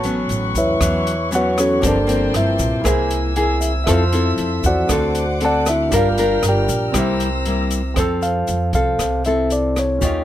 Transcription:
Already playing: upright bass A1, nylon-string guitar A2, grand piano F#4 B4 C#5 A5, string section B4 F#5 C#6
0.03 nylon-string guitar F#3 B3 C#4, closed hi-hat, shaker
0.29 upright bass A1, closed hi-hat, shaker
0.55 upright bass E2, tine electric piano E4 B4 C#5 E5, kick, closed hi-hat, shaker
0.81 upright bass E2, nylon-string guitar E3 F#3 B3 C#4, kick, cross-stick, closed hi-hat, shaker
1.07 closed hi-hat, shaker
1.31 nylon-string guitar F#3 B3 C#4, closed hi-hat, shaker
1.35 tine electric piano F#4 B4 C#5 F#5
1.58 tine electric piano C#4 F#4 A4 C#5, cross-stick, closed hi-hat, shaker
1.80 upright bass G1, nylon-string guitar G2 F3 A#3 C4, grand piano A#3 G4, string section A#3 G5 A5, kick, closed hi-hat, shaker
1.84 tine electric piano D4 A4 A#4 D5, grand piano C5 A5, string section C6
2.07 nylon-string guitar F3 A#3 C4, closed hi-hat, shaker
2.34 upright bass G1, tine electric piano E4 E5, cross-stick, closed hi-hat
2.59 upright bass A#1, kick, closed hi-hat, shaker
2.81 upright bass C2, nylon-string guitar C3 A#3 E4 G#4, grand piano E4 A#4, kick, cross-stick, closed hi-hat
2.85 grand piano C5 G#5, string section G#5 E6, shaker
3.11 closed hi-hat, shaker
3.36 nylon-string guitar A#3 E4 G#4, grand piano G#5, closed hi-hat
3.61 grand piano E5, closed hi-hat, shaker
3.84 upright bass F2, nylon-string guitar F3 C4 E4, grand piano A4 E5, string section A4 E5, kick, cross-stick, closed hi-hat, shaker
3.88 grand piano F4 C5, nylon-string guitar A4
4.12 nylon-string guitar C4 E4 A4, closed hi-hat, shaker
4.38 upright bass F2, closed hi-hat
4.64 upright bass E2, tine electric piano F#4 C5 D5 F#5, kick, closed hi-hat, shaker
4.87 upright bass D2, nylon-string guitar D3 C4 F#4, grand piano D4 A4, string section C5 F#5 D6, kick, cross-stick, closed hi-hat, shaker
4.91 nylon-string guitar A4, grand piano C5 F#5
5.15 closed hi-hat, shaker
5.41 nylon-string guitar C4 F#4 A4, closed hi-hat
5.45 tine electric piano A4 D5 F#5 A5
5.66 tine electric piano E4 E5, cross-stick, closed hi-hat, shaker
5.89 upright bass G1, grand piano D4 G4 A#4, nylon-string guitar D4 F4, string section A#4 G5 F6, kick, closed hi-hat, shaker
5.93 nylon-string guitar G3 A#4, tine electric piano F4 F5, grand piano F5
5.97 tine electric piano A#4 D5
6.18 nylon-string guitar D4 F4 A#4, closed hi-hat, shaker
6.43 upright bass G1, cross-stick, closed hi-hat, shaker
6.49 tine electric piano G4 A#4 D5 G5
6.68 upright bass A#1, closed hi-hat, shaker
6.92 upright bass C2, nylon-string guitar C3 G3 A#3 E4, grand piano C4 G4 A#4, string section C5 A#5 E6, kick, cross-stick, closed hi-hat, shaker
6.98 grand piano E5
7.20 closed hi-hat, shaker
7.45 nylon-string guitar G3 A#3 E4, closed hi-hat
7.71 closed hi-hat, shaker
7.94 upright bass F2, nylon-string guitar F3 C4, grand piano C4 A4, tine electric piano C5, kick, cross-stick, closed hi-hat, shaker
7.99 nylon-string guitar A4, grand piano E6
8.22 tine electric piano F5, closed hi-hat, shaker
8.47 upright bass F2, closed hi-hat, shaker
8.73 upright bass C2, nylon-string guitar C4 A4, tine electric piano F5, kick, closed hi-hat, shaker
8.99 upright bass C2, nylon-string guitar C3, kick, cross-stick, closed hi-hat, shaker
9.24 nylon-string guitar C4 E4 A4, tine electric piano E5, closed hi-hat, shaker
9.50 tine electric piano D5, closed hi-hat, shaker
9.76 tine electric piano C#5, cross-stick, closed hi-hat, shaker
9.98 upright bass D#2, nylon-string guitar D#3 C#4 F4 G4, grand piano C#4 F4 G4, kick, closed hi-hat, shaker
10.04 grand piano D#5

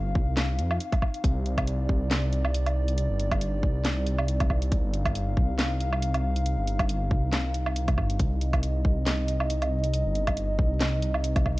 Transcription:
Already playing: detuned saw bass G1, analog synth pad C4 D#4 F5
0.15 detuned saw bass C2, kick
0.37 snare, clap, closed hi-hat
0.59 detuned saw bass F2, closed hi-hat
0.71 low woodblock
0.80 closed hi-hat
0.92 kick, closed hi-hat, low woodblock
1.02 kick, low woodblock
1.14 closed hi-hat
1.24 detuned saw bass C2, analog synth pad D5, kick, closed hi-hat
1.46 closed hi-hat
1.58 kick, closed hi-hat, low woodblock
1.67 closed hi-hat
1.89 detuned saw bass C2, kick
2.11 snare, clap, closed hi-hat
2.33 closed hi-hat
2.45 low woodblock
2.54 closed hi-hat
2.66 closed hi-hat, low woodblock
2.88 closed hi-hat
2.98 closed hi-hat
3.10 detuned saw bass G1
3.20 closed hi-hat
3.31 kick, closed hi-hat, low woodblock
3.41 closed hi-hat
3.63 detuned saw bass C2, kick
3.85 snare, clap, closed hi-hat
4.07 closed hi-hat
4.18 low woodblock
4.28 closed hi-hat
4.40 kick, closed hi-hat, low woodblock
4.50 kick, low woodblock
4.62 closed hi-hat
4.72 analog synth pad F5, kick, closed hi-hat
4.84 detuned saw bass G1
4.94 closed hi-hat
5.06 kick, closed hi-hat, low woodblock
5.15 closed hi-hat
5.37 detuned saw bass C2, kick
5.59 snare, clap, closed hi-hat
5.80 closed hi-hat
5.93 low woodblock
6.02 closed hi-hat
6.14 closed hi-hat, low woodblock
6.36 closed hi-hat
6.46 closed hi-hat
6.58 detuned saw bass G1
6.67 closed hi-hat
6.79 kick, closed hi-hat, low woodblock
6.89 closed hi-hat
7.11 detuned saw bass C2, kick
7.33 snare, clap, closed hi-hat
7.54 closed hi-hat
7.66 low woodblock
7.76 closed hi-hat
7.88 kick, closed hi-hat, low woodblock
7.98 detuned saw bass G1, kick, low woodblock
8.10 detuned saw bass G1, closed hi-hat
8.19 detuned saw bass C2, analog synth pad D#5, kick, closed hi-hat
8.41 closed hi-hat
8.53 kick, closed hi-hat, low woodblock
8.63 closed hi-hat
8.85 detuned saw bass C2, kick
9.06 snare, clap, closed hi-hat
9.28 closed hi-hat
9.40 low woodblock
9.50 closed hi-hat
9.62 closed hi-hat, low woodblock
9.84 closed hi-hat
9.94 closed hi-hat
10.05 detuned saw bass G1
10.15 closed hi-hat
10.27 kick, closed hi-hat, low woodblock
10.37 closed hi-hat
10.59 detuned saw bass C2, kick
10.81 snare, clap, closed hi-hat
11.02 closed hi-hat
11.14 low woodblock
11.24 closed hi-hat
11.36 kick, closed hi-hat, low woodblock
11.46 kick, low woodblock

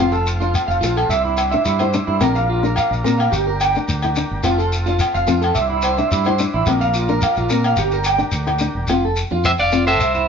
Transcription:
Already playing: fingered electric bass F1, clean electric guitar F4
0.00 nylon-string guitar C4, transistor combo organ C4 F4 A4
0.12 clean electric guitar A4, shekere
0.27 shekere
0.40 nylon-string guitar D4, clean electric guitar F4, shekere
0.55 low agogo, shekere
0.68 fingered electric bass F1, clean electric guitar F5, shekere
0.81 fingered electric bass A#1, clean electric guitar F4, muted nylon-string guitar stroke, shekere
0.96 clean electric guitar A4, low agogo, shekere
1.09 fingered electric bass C2, transistor combo organ D4 C5, clean electric guitar E5, shekere
1.13 transistor combo organ E4
1.25 clean electric guitar E4
1.37 muted clean electric guitar stroke, low agogo, shekere
1.52 nylon-string guitar D4, clean electric guitar E5, shekere
1.65 fingered electric bass G2, clean electric guitar E4, shekere
1.79 nylon-string guitar E4, clean electric guitar C5, low agogo, shekere
1.93 nylon-string guitar D4, shekere
2.07 fingered electric bass G2, clean electric guitar E4
2.21 fingered electric bass A#1, nylon-string guitar C4, transistor combo organ F4 A#4, clean electric guitar A#4, low agogo, shekere
2.35 clean electric guitar F5, shekere
2.50 clean electric guitar F4
2.63 nylon-string guitar D4, clean electric guitar A#4, shekere
2.76 clean electric guitar F5, low agogo, shekere
2.91 fingered electric bass A#1, shekere
3.04 fingered electric bass A#2, nylon-string guitar C4, clean electric guitar A#4, shekere
3.18 clean electric guitar F5, low agogo, shekere
3.31 fingered electric bass G1, transistor combo organ G4, clean electric guitar G4, shekere
3.47 clean electric guitar A#4
3.60 clean electric guitar G5, low agogo, shekere
3.75 nylon-string guitar D4, shekere
3.88 fingered electric bass D2, shekere
4.02 nylon-string guitar E4, low agogo, shekere
4.16 nylon-string guitar D4, shekere
4.31 fingered electric bass G1
4.43 fingered electric bass F1, nylon-string guitar C4, transistor combo organ C4 F4 A4, clean electric guitar F4, low agogo, shekere
4.58 clean electric guitar A4, shekere
4.72 shekere
4.86 nylon-string guitar D4, clean electric guitar F4, shekere
4.99 low agogo, shekere
5.14 fingered electric bass F1, clean electric guitar F5, shekere
5.27 fingered electric bass F2, nylon-string guitar C4, clean electric guitar F4, shekere
5.41 clean electric guitar A4, low agogo, shekere
5.54 fingered electric bass C2, transistor combo organ D4 E4 C5, clean electric guitar E5, shekere
5.70 clean electric guitar E4
5.82 clean electric guitar C5, low agogo, shekere
5.98 nylon-string guitar D4, clean electric guitar E5, shekere
6.12 fingered electric bass G2, clean electric guitar E4, shekere
6.25 nylon-string guitar E4, clean electric guitar C5, low agogo, shekere
6.39 nylon-string guitar D4, shekere
6.54 fingered electric bass A1, clean electric guitar E4
6.66 fingered electric bass A#1, nylon-string guitar C4, transistor combo organ D4 F4 A#4, muted clean electric guitar stroke, low agogo, shekere
6.81 clean electric guitar F5, shekere
6.94 clean electric guitar F4, shekere
7.08 nylon-string guitar D4, clean electric guitar A#4, shekere
7.21 clean electric guitar F5, low agogo, shekere
7.36 fingered electric bass A#1, clean electric guitar F4, shekere
7.50 fingered electric bass A#2, nylon-string guitar C4, clean electric guitar A#4, shekere
7.64 clean electric guitar F5, low agogo, shekere
7.77 fingered electric bass G1, transistor combo organ D4 G4, clean electric guitar G4, shekere
7.91 clean electric guitar A#4, shekere
8.04 clean electric guitar G5, low agogo, shekere
8.18 nylon-string guitar D4, shekere
8.32 fingered electric bass D2, shekere
8.47 nylon-string guitar E4, low agogo, shekere
8.59 nylon-string guitar D4, shekere
8.75 fingered electric bass E1
8.87 fingered electric bass F1, nylon-string guitar C4, clean electric guitar F4, low agogo, shekere
9.05 clean electric guitar A4
9.16 shekere
9.31 fingered electric bass F2, nylon-string guitar D4, clean electric guitar F4
9.44 clean electric guitar C5 E5, low agogo, shekere
9.58 fingered electric bass F1, clean electric guitar D5 F5, shekere
9.72 nylon-string guitar C4, clean electric guitar F4, shekere
9.87 clean electric guitar A4 C5 E5, low agogo
10.00 fingered electric bass C2, clean electric guitar E5, shekere
10.14 clean electric guitar E4, shekere

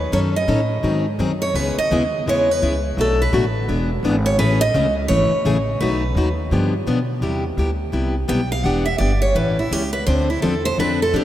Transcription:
Already playing: upright bass D#2, steel-string acoustic guitar B4
0.12 upright bass F#2, steel-string acoustic guitar D#3 F#3 C#4 D#4 A4 C#5
0.36 steel-string acoustic guitar D#5
0.48 upright bass A2, steel-string acoustic guitar D#3 F#3 C#4 D#4 A4
0.83 upright bass G#2, steel-string acoustic guitar D#3 F#3 C4 D#4 G#4
1.19 upright bass F#2, steel-string acoustic guitar D#3 F#3 C4 D#4 G#4
1.42 steel-string acoustic guitar C#5
1.54 upright bass C#2, steel-string acoustic guitar C#3 G#3 B3 E4 G#4 B4
1.77 steel-string acoustic guitar D#5, muted upright bass stroke
1.91 upright bass D#2, steel-string acoustic guitar C#3 G#3 B3 E4 G#4
2.26 upright bass E2, steel-string acoustic guitar C#3 G#3 B3 E4 G#4 C#5
2.51 steel-string acoustic guitar B4
2.62 upright bass C#2, steel-string acoustic guitar C#3 G#3 B3 E4 G#4
2.97 upright bass B1, steel-string acoustic guitar B2 F#3 A3 D4 F#4 A4
3.22 steel-string acoustic guitar B4
3.32 upright bass A1, steel-string acoustic guitar B2 F#3 A3 D4 F#4
3.68 upright bass E1, steel-string acoustic guitar E3 B3 D4 G#4
4.03 upright bass G#1, steel-string acoustic guitar E3 B3 D4 G#4
4.26 steel-string acoustic guitar C#5
4.38 upright bass A1, steel-string acoustic guitar C#3 E3 A3 C#4 G#4 B4
4.61 steel-string acoustic guitar D#5
4.74 upright bass C#2, steel-string acoustic guitar C#3 E3 A3 C#4 G#4
5.08 upright bass G#1, steel-string acoustic guitar C#3 E3 A3 C#4 G#4 C#5
5.31 muted upright bass stroke
5.44 upright bass A1, steel-string acoustic guitar C#3 E3 A3 C#4 G#4
5.80 upright bass B1, steel-string acoustic guitar B2 F#3 A3 D#4 F#4 B4
6.15 upright bass D#2, steel-string acoustic guitar B2 F#3 A3 D#4 F#4
6.51 upright bass G2, steel-string acoustic guitar D3 F3 B3 D4 G4
6.86 upright bass B2, steel-string acoustic guitar D3 F3 B3 D4 G4
7.21 upright bass E2, steel-string acoustic guitar C3 G3 B3 E4 G4
7.57 upright bass D2, steel-string acoustic guitar C3 G3 B3 E4 G4
7.92 upright bass C2, steel-string acoustic guitar C3 G3 B3 E4 G4
8.28 upright bass B1, steel-string acoustic guitar C3 G3 B3 E4 G4 G5
8.52 steel-string acoustic guitar F5
8.64 upright bass E1, steel-string acoustic guitar E3 B3 D4 G4 F#5
8.86 steel-string acoustic guitar E5
8.98 upright bass G1, steel-string acoustic guitar E3 B3 D4 G4 D5
9.22 steel-string acoustic guitar C#5
9.35 upright bass A1, steel-string acoustic guitar E3 G3 C#4 E4 A4 B4
9.59 steel-string acoustic guitar E4
9.71 upright bass C#2, steel-string acoustic guitar E3 G3 C#4 E4 G4 A4
9.93 steel-string acoustic guitar B4
10.06 upright bass D2, steel-string acoustic guitar D3 F3 C4 D4 A4 C5
10.30 steel-string acoustic guitar E4
10.42 upright bass E2, steel-string acoustic guitar D3 F3 C4 D4 A4
10.65 steel-string acoustic guitar C5
10.78 upright bass F2, steel-string acoustic guitar D3 F3 C4 D4 A4 B4
11.02 steel-string acoustic guitar A4
11.13 upright bass C3, steel-string acoustic guitar D3 F3 C4 D4 G4 A4

